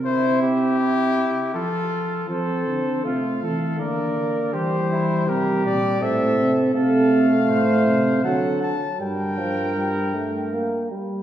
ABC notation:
X:1
M:3/4
L:1/8
Q:1/4=80
K:Fmix
V:1 name="Trumpet"
c G3 A2 | c2 f2 d2 | c2 B d =e2 | [K:Gm] f4 ^f a |
g4- g z |]
V:2 name="Flugelhorn"
=E2 E2 F2 | A2 F A B2 | G =E G2 A2 | [K:Gm] A2 c2 A z |
B4- B z |]
V:3 name="Euphonium"
z6 | C2 A,2 B,2 | G,4 C2 | [K:Gm] A,4 ^F, z |
G, F, G, A, B, G, |]
V:4 name="Tuba" clef=bass
C,3 z F,2 | F, D, C, =E, D, D, | =E,2 C, B,, A,, C, | [K:Gm] C,2 A,, C, D, z |
G,,4- G,, z |]